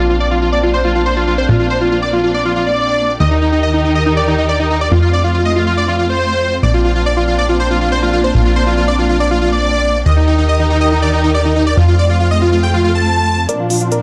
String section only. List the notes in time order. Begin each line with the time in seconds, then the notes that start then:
Already playing: A#3 C4 D4
3.20 D#3 D#4 G4 A#4
4.92 A3 C4 F4
6.63 A#3 D4
10.06 D#3 D#4 G4 A#4
11.77 A3 C4 F4
13.49 A#2 F3 C4 D4